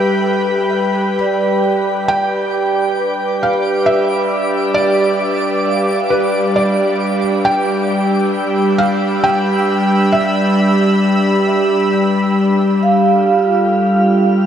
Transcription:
Already playing: G3 D4 G4 B4 E5 G5 B5
1.21 D5
1.47 G5
2.08 G3 D4 D5 G5 D6
2.99 B4
3.43 F5
3.84 D5 E5
4.74 D5
5.67 E5 F5
6.10 B4
6.56 D5
7.45 G3 G5
7.91 E6
8.28 B5
8.78 F5
9.24 G5
10.12 D5 E5
12.83 G3 D4 F5
13.04 A4
13.20 G5
13.28 F4

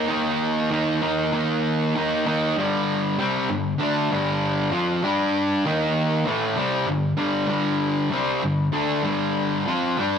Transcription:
0.09 D#3 A#3 D#4
0.71 D#3 A#3 D#4
1.02 D#3 A#3 D#4
1.32 D#3 A#3 D#4
1.95 D#3 A#3 D#4
2.26 D#3 A#3 D#4
2.58 G2 D3 G3
3.19 C3 G3 C4
3.50 G2 D3
3.79 D3 A3 D4
4.11 G2 D3 G3
4.71 F3 C4 F4
5.03 G3 D4 G4
5.66 D#3 A#3 D#4
6.26 A2 E3 A3
6.57 C3 G3 C4
6.86 G2 D3
7.17 G2 D3 G3
7.48 G2 D3 G3
8.11 C3 G3 C4
8.43 G2 D3
8.72 D3 A3 D4
9.03 G2 D3 G3
9.66 F3 C4 F4
9.98 G3 D4 G4

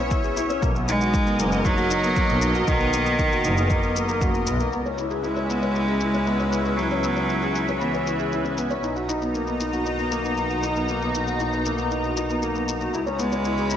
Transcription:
Already playing: B3 C#4 E4 G#4 C#5 E5
0.00 C#4
0.11 E4, kick, shaker
0.24 G#4, shaker
0.36 E4, shaker
0.49 C#4, shaker
0.62 B1 A#3 A#4 D#5, kick, shaker
0.74 B3, shaker
0.88 G#3 D#4, shaker
1.01 F#4, shaker
1.13 D#4, kick, shaker
1.26 B3, shaker
1.38 F#1 A#3, shaker
1.52 B3, shaker
1.65 F#3 D#4, kick, shaker
1.78 F#4, shaker
1.90 D#4, shaker
2.03 B3, shaker
2.16 A#3, kick, shaker
2.29 B1 B3, shaker
2.42 D#4, shaker
2.54 F#4, shaker
2.67 B1 D#3 D#4, kick, shaker
2.80 B3, shaker
2.93 A#3, shaker
3.06 B3, shaker
3.19 D#4, kick, shaker
3.32 F#4, shaker
3.44 F#1 D#4, shaker
3.57 B3, shaker
3.70 A#3, kick, shaker
3.83 B3, shaker
3.95 A#3, shaker
4.08 A#3, shaker
4.21 F#1 F#4, kick, shaker
4.34 B3, shaker
4.47 B1 B3, shaker
4.60 A#3, shaker
4.72 C#2 B3 C#4 B4 E5, shaker
4.85 C#4, shaker
4.98 E4, shaker
5.10 G#4, shaker
5.23 G#3 E4, shaker
5.36 C#4, shaker
5.49 B3, shaker
5.62 C#4, shaker
5.75 E4, shaker
5.88 G#4, shaker
6.01 E4, shaker
6.14 C#4, shaker
6.27 B3, shaker
6.40 C#4, shaker
6.52 E4, shaker
6.65 G#4, shaker
6.77 F#3 E4, shaker
6.91 C#4, shaker
7.04 B3, shaker
7.16 C#4, shaker
7.29 E4, shaker
7.42 G#4, shaker
7.55 E4, shaker
7.68 C#4, shaker
7.80 E3 B3, shaker
7.94 C#4, shaker
8.07 E4, shaker
8.19 G#4, shaker
8.32 E4, shaker
8.44 C#4, shaker
8.57 B3, shaker
8.70 C#4, shaker
8.82 B1 D#4 A#5, shaker
8.95 F#4, shaker
9.09 D#4, shaker
9.22 B3, shaker
9.34 A#3, shaker
9.47 B3, shaker
9.60 D#4, shaker
9.72 F#4, shaker
9.85 D#4, shaker
9.98 B3, shaker
10.11 A#3, shaker
10.24 B3, shaker
10.37 D#4, shaker
10.50 F#4, shaker
10.63 D#4, shaker
10.76 B3, shaker
10.89 A#3, shaker
11.02 B3, shaker
11.15 D#4, shaker
11.27 F#4, shaker
11.40 D#4, shaker
11.53 B3, shaker
11.65 A#3, shaker
11.78 B3, shaker
11.91 D#4, shaker
12.04 F#4, shaker
12.17 D#4, shaker
12.29 B3, shaker
12.42 A#3, shaker
12.55 B3, shaker
12.68 D#4, shaker
12.81 F#4, shaker
12.93 C#2 E4 C#5 B5, shaker
13.06 C#4, shaker
13.19 G#3 B3, shaker
13.32 C#4, shaker
13.45 E4, shaker
13.58 G#4, shaker
13.70 E4, shaker

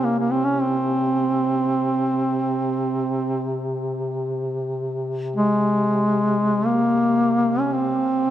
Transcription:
Already playing: C3
0.04 A#3
0.20 A#3
0.32 C4
0.45 C#4
0.61 C4
5.36 G#3
6.66 A#3
7.60 C#4
7.73 C4
8.20 C3

